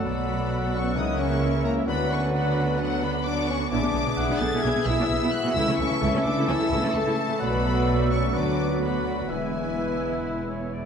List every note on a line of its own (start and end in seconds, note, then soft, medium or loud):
0.00 0.16 F#3 medium
0.00 0.96 F#3 medium
0.00 0.26 A3 medium
0.00 0.39 F#4 medium
0.00 0.62 A4 medium
0.00 0.97 A4 medium
0.00 0.50 D5 medium
0.00 0.99 D5 medium
0.00 0.95 D5 medium
0.00 0.73 F#5 medium
0.00 0.72 B5 loud
0.00 0.84 D6 medium
0.05 0.95 B1 medium
0.05 0.95 B2 medium
0.05 0.99 B2 medium
0.05 0.74 B3 medium
0.05 0.98 B3 medium
0.05 0.95 F#4 medium
0.05 0.95 A4 medium
0.05 1.45 F#5 medium
0.17 0.99 F#3 medium
0.28 0.99 A3 medium
0.51 0.99 D5 medium
0.74 0.96 C#4 medium
0.74 0.97 C#6 loud
0.95 1.88 C#2 medium
0.95 1.88 C#3 medium
0.95 1.90 C#3 medium
0.95 1.87 E3 medium
0.95 1.88 A#3 medium
0.95 1.20 D#4 loud
0.95 1.86 E4 medium
0.95 1.87 A#4 medium
0.95 1.87 C#5 medium
0.95 1.89 E5 medium
0.95 1.20 D#6 loud
1.08 1.90 C#4 medium
1.19 1.90 A#3 medium
1.19 1.64 C#4 medium
1.19 1.65 C#6 loud
1.31 1.90 E4 medium
1.42 1.64 E5 medium
1.42 1.88 E5 medium
1.54 1.90 A#4 medium
1.65 1.88 A#3 medium
1.65 1.90 E5 medium
1.65 1.73 A#5 loud
1.77 1.90 E6 medium
1.86 3.67 D2 medium
1.86 3.67 D3 medium
1.86 3.73 D3 medium
1.86 3.39 F#3 medium
1.86 2.09 B3 medium
1.86 2.31 B3 medium
1.86 2.31 D4 medium
1.86 2.32 F#4 medium
1.86 3.39 B4 medium
1.86 3.39 D5 medium
1.86 2.32 F#5 medium
1.86 3.40 F#5 loud
1.86 2.11 B5 loud
1.99 3.47 D4 medium
2.10 3.36 B3 medium
2.10 2.33 C#4 medium
2.10 2.34 C#6 loud
2.23 3.25 F#4 medium
2.32 2.77 B3 medium
2.32 2.79 B3 medium
2.32 2.78 D4 medium
2.32 2.78 F#4 medium
2.32 5.58 D5 medium
2.32 2.78 F#5 medium
2.32 2.78 B5 loud
2.45 3.13 B4 medium
2.68 2.90 D6 medium
2.78 3.02 F#3 loud
2.78 3.24 B3 medium
2.78 3.23 D4 medium
2.78 3.24 F#4 medium
2.78 3.02 F#5 loud
2.78 3.25 F#5 medium
2.91 5.58 D6 medium
3.02 3.26 B3 loud
3.02 3.74 F#5 medium
3.02 3.25 B5 loud
3.14 4.28 B4 medium
3.24 3.70 B3 medium
3.24 3.70 D4 medium
3.24 3.48 D4 loud
3.24 3.70 F#4 medium
3.24 3.73 F#4 medium
3.24 3.71 F#5 loud
3.24 3.48 D6 loud
3.37 3.59 B3 medium
3.47 3.60 C#4 loud
3.47 5.58 D4 medium
3.47 3.70 C#6 loud
3.60 3.93 B3 medium
3.70 3.75 B1 loud
3.70 5.58 B2 medium
3.70 3.76 B2 loud
3.70 7.41 E3 medium
3.70 3.75 B3 medium
3.70 4.39 D4 loud
3.70 3.76 E4 medium
3.70 5.52 G#4 loud
3.70 5.53 G#4 loud
3.70 4.14 D5 loud
3.70 7.37 E5 medium
3.70 7.37 E5 loud
3.70 4.38 D6 loud
3.82 3.87 B2 medium
3.82 5.31 G#3 medium
3.82 3.87 B3 medium
3.82 3.88 D4 medium
3.93 3.99 B1 medium
3.93 3.98 B2 medium
3.93 5.19 B3 medium
3.93 3.99 B3 medium
4.05 4.10 B2 medium
4.05 4.10 B3 medium
4.05 4.10 D4 medium
4.05 5.08 G#4 medium
4.17 4.22 B1 loud
4.17 4.22 B2 loud
4.17 4.22 B3 loud
4.17 4.22 E4 medium
4.17 6.01 E5 medium
4.17 4.64 F#5 loud
4.29 4.33 B2 medium
4.29 4.34 B3 medium
4.29 4.34 D4 medium
4.29 4.96 B4 medium
4.39 4.44 B1 medium
4.39 4.45 B2 medium
4.39 4.45 B3 medium
4.39 4.63 A4 loud
4.39 4.62 G#5 medium
4.39 4.63 A6 loud
4.52 4.57 B2 loud
4.52 4.57 B3 loud
4.52 4.57 E4 loud
4.62 4.67 B1 medium
4.62 4.68 B2 medium
4.62 4.69 B3 medium
4.62 4.70 D4 medium
4.62 4.86 G#4 loud
4.62 6.03 E5 medium
4.62 4.85 G#5 medium
4.62 4.86 G#6 loud
4.75 4.79 B2 medium
4.75 4.81 B3 medium
4.85 4.90 B1 loud
4.85 4.91 B2 loud
4.85 4.92 B3 loud
4.85 5.34 E4 loud
4.85 4.93 E4 loud
4.85 5.58 G#5 medium
4.85 5.33 E6 loud
4.97 5.02 B2 medium
4.97 5.04 B3 medium
4.97 5.05 D4 medium
4.97 5.57 B4 medium
5.08 5.13 B1 medium
5.08 5.14 B2 medium
5.08 5.16 B3 medium
5.08 5.58 G#4 medium
5.20 5.25 B2 loud
5.20 5.43 B3 medium
5.20 5.27 B3 medium
5.20 5.27 E4 loud
5.32 5.58 G#3 medium
5.32 5.56 F#4 loud
5.32 5.55 F#6 loud
5.43 5.48 B2 medium
5.43 5.58 B3 medium
5.43 5.51 B3 medium
5.54 5.59 C#2 loud
5.54 5.60 C#3 loud
5.54 7.43 C#3 medium
5.54 5.61 A3 loud
5.54 5.79 E4 loud
5.54 5.62 E4 loud
5.54 8.35 A4 loud
5.54 7.37 A4 loud
5.54 5.78 E6 loud
5.67 5.71 C#3 medium
5.67 5.73 A3 medium
5.67 7.05 C#4 medium
5.67 5.73 C#4 medium
5.78 5.83 C#2 medium
5.78 5.84 C#3 medium
5.78 5.84 A3 medium
5.78 6.93 A3 medium
5.78 6.24 C#6 loud
5.82 6.26 C#4 loud
5.90 5.95 C#3 medium
5.90 5.96 A3 medium
5.90 5.96 C#4 medium
5.90 6.12 A4 medium
6.01 6.06 C#2 loud
6.01 6.07 C#3 loud
6.01 6.06 A3 medium
6.01 6.06 E4 loud
6.01 7.39 A5 loud
6.13 6.18 C#3 medium
6.13 6.19 A3 medium
6.13 6.20 C#4 medium
6.13 6.82 A4 medium
6.24 6.29 C#2 medium
6.24 6.30 C#3 medium
6.24 6.31 A3 medium
6.24 6.49 D4 loud
6.24 6.48 A5 medium
6.24 6.47 D6 loud
6.36 6.41 C#3 loud
6.36 6.42 A3 loud
6.36 6.42 E4 loud
6.48 6.53 C#2 medium
6.48 6.52 C#3 medium
6.48 6.53 A3 medium
6.48 6.53 C#4 medium
6.48 6.94 E4 loud
6.48 6.70 A5 medium
6.48 6.94 E6 loud
6.59 6.64 C#3 medium
6.59 6.64 A3 medium
6.71 6.75 C#2 loud
6.71 6.76 C#3 loud
6.71 6.76 A3 loud
6.71 6.76 E4 medium
6.71 8.36 A5 medium
6.82 6.87 C#3 medium
6.82 6.88 A3 medium
6.82 6.88 C#4 medium
6.94 6.99 C#2 medium
6.94 6.99 C#3 medium
6.94 7.16 A3 medium
6.94 6.99 A3 medium
6.94 7.41 A3 medium
6.94 7.40 A5 loud
7.06 7.10 C#3 loud
7.06 7.10 A3 medium
7.06 7.28 C#4 medium
7.06 7.10 E4 loud
7.17 7.63 A3 medium
7.29 7.34 C#3 medium
7.29 7.34 A3 medium
7.29 7.43 C#4 medium
7.39 8.31 B1 medium
7.39 8.36 B2 medium
7.39 8.30 B2 medium
7.39 9.30 F#3 medium
7.39 8.30 A3 medium
7.39 8.30 F#4 medium
7.39 8.31 B4 medium
7.39 9.26 D5 medium
7.39 8.31 D5 medium
7.39 7.89 F#5 medium
7.39 8.11 B5 loud
7.45 8.13 B3 loud
7.53 9.32 F#3 medium
7.64 8.36 A3 medium
7.87 9.32 D5 medium
7.87 8.35 E5 medium
7.99 8.36 A4 medium
8.11 8.36 C#4 medium
8.11 8.34 C#6 loud
8.23 9.32 D6 medium
8.33 9.30 D2 medium
8.33 9.32 D3 medium
8.33 8.80 B3 medium
8.33 8.82 D4 medium
8.33 8.80 F#4 medium
8.33 9.73 B4 medium
8.33 8.81 B4 medium
8.33 8.81 D5 medium
8.33 8.83 D6 loud
8.58 9.41 B3 medium
8.71 8.93 F#4 medium
8.81 9.28 B3 medium
8.81 9.29 B3 medium
8.81 9.28 F#4 medium
8.81 9.65 B4 medium
8.81 9.28 B4 medium
8.81 9.29 D5 medium
8.81 9.31 F#5 medium
8.81 9.29 B5 medium
8.94 9.32 F#4 medium
9.06 9.32 F#5 medium
9.19 10.00 B5 medium
9.29 10.85 E1 medium
9.29 10.85 E2 medium
9.29 10.85 E3 medium
9.29 10.74 G#3 medium
9.29 10.85 B3 medium
9.29 10.85 E4 medium
9.29 10.85 B4 medium
9.29 10.85 E5 medium
9.29 10.74 G#5 medium
9.42 10.85 B3 medium
9.54 9.76 E4 soft
9.66 10.72 B4 soft
9.78 10.84 E4 medium
9.78 10.46 B4 medium
10.01 10.24 B5 soft
10.25 10.48 B5 medium
10.38 10.60 E5 medium
10.49 10.75 C#5 medium
10.49 10.85 B5 soft
10.61 10.85 E5 soft
10.73 10.85 B4 soft
10.73 10.85 D5 medium